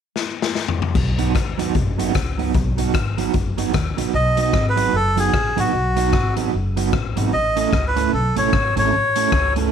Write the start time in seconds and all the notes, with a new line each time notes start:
0.16 snare
0.42 snare
0.55 snare
0.68 floor tom
0.82 floor tom
0.95 B1, kick, crash
1.18 F#3 B3 D#4 F#4, closed hi-hat
1.35 D#2, kick, cross-stick, closed hi-hat
1.58 F#3 B3 D#4 F#4, closed hi-hat
1.75 F#1, kick, closed hi-hat
1.98 F#3 B3 D#4 F#4, closed hi-hat
2.15 C#2, muted clean electric guitar stroke, kick, cross-stick, closed hi-hat
2.38 F#3 B3 D#4 F#4, open hi-hat
2.54 B1, kick, closed hi-hat
2.77 F#3 B3 D#4 F#4, closed hi-hat
2.94 G#1, kick, cross-stick, closed hi-hat
3.18 F#3 B3 D#4 F#4, closed hi-hat
3.34 F#1, muted clean electric guitar stroke, kick, closed hi-hat
3.57 F#3 B3 D#4 F#4, closed hi-hat
3.74 D#2, muted clean electric guitar stroke, kick, cross-stick, closed hi-hat
3.97 A1 F#3 B3 D#4 F#4, closed hi-hat
4.13 B1 D#5
4.37 F#3 B3 D#4 F#4, closed hi-hat
4.42 D#5
4.53 G#1, kick, cross-stick
4.69 B4
4.76 F#3 B3 D#4 F#4, closed hi-hat
4.93 F#1 A4
5.16 F#3 B3 D#4 F#4 G#4, closed hi-hat
5.33 A1, kick, cross-stick
5.56 A1 F#3 B3 D#4 F#4, closed hi-hat
5.73 B1
5.96 F#3 B3 D#4 F#4, closed hi-hat
6.13 G#1, kick, cross-stick
6.36 F#3 B3 D#4 F#4, closed hi-hat
6.54 F#1
6.76 F#3 B3 D#4 F#4, closed hi-hat
6.93 A1, kick, cross-stick
7.16 G#1 F#3 B3 D#4 F#4, closed hi-hat
7.33 A1 D#5
7.56 A3 C#4 E4 A4, closed hi-hat
7.60 D#5
7.73 C#2, kick, cross-stick
7.88 B4
7.96 A3 C#4 E4 A4, closed hi-hat
8.13 B1 A4
8.36 A1 A3 C#4 E4 A4 C#5, closed hi-hat
8.53 G#1, kick, cross-stick
8.76 G#1 A3 C#4 E4 A4 C#5, closed hi-hat
8.93 A1
9.16 A3 C#4 E4 A4, closed hi-hat
9.32 C#2, kick, cross-stick
9.56 A3 C#4 E4 A4, closed hi-hat